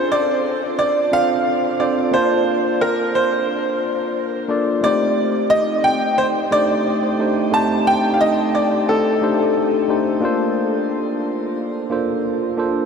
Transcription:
Already playing: tine electric piano C4 D4 F4 A4 C5
0.12 grand piano D5
0.79 grand piano D5
1.11 tine electric piano C4 D4 F4 A4 C5, grand piano F5
1.79 tine electric piano C4 D4 F4 A4 C5, grand piano D5
2.11 tine electric piano A#3 D4 F4 A5, grand piano C5
2.16 tine electric piano C5
2.81 grand piano A#4
3.15 grand piano C5
4.48 tine electric piano A#3 D4 F4 A4 D5
4.81 tine electric piano A3 C4 D#4 G4, grand piano D5
4.86 tine electric piano C5
5.50 grand piano D#5
5.84 grand piano G5
6.18 grand piano C5
6.51 tine electric piano A3 D4 D#4 G4 C5, grand piano D5
7.19 tine electric piano A3 D4 D#4 G4 C5
7.52 tine electric piano A3 C4 D#4 G4, grand piano A5
7.56 tine electric piano C5
7.87 grand piano G5
8.14 grand piano F5
8.21 grand piano D#5
8.55 grand piano D5
8.89 grand piano A4
9.21 tine electric piano A3 D4 D#4 G4 C5
9.88 tine electric piano A3 D4 D#4 G4 C5
10.20 tine electric piano A#3 D4 F4 A4
10.25 tine electric piano C5
11.90 tine electric piano A#3 D4 F4 A4 C5
12.57 tine electric piano A#3 D4 F4 A4 C5

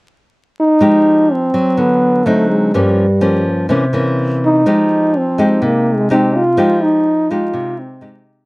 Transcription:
0.60 trombone D#4
0.81 nylon-string guitar F3 G#3 D#4 G4
1.32 trombone C4
1.54 nylon-string guitar F#3
1.77 nylon-string guitar D3, trombone B3
2.26 nylon-string guitar F#3 C4 D#4, trombone A3
2.51 trombone G#3
2.74 nylon-string guitar G2 F3 A#3 C#4, trombone G3
3.21 nylon-string guitar F3 A#3 C#4
3.69 nylon-string guitar C3 E3 A#3 C#4
3.93 nylon-string guitar E3 A#3 C#4
4.45 trombone D#4
4.66 nylon-string guitar F3 G#3 D#4 G4
5.17 trombone C4
5.38 nylon-string guitar G#3 D#4 G4
5.62 nylon-string guitar C3, trombone A#3
5.96 trombone G#3
6.10 nylon-string guitar G#3 D#4 G4, trombone C4
6.36 trombone F4
6.57 nylon-string guitar F3 G#3 D#4 G4
6.84 trombone D#4
7.31 nylon-string guitar G#3 D#4 G4, trombone F4
7.54 nylon-string guitar C3
7.80 trombone C4
8.01 nylon-string guitar G#3 D#4 G4

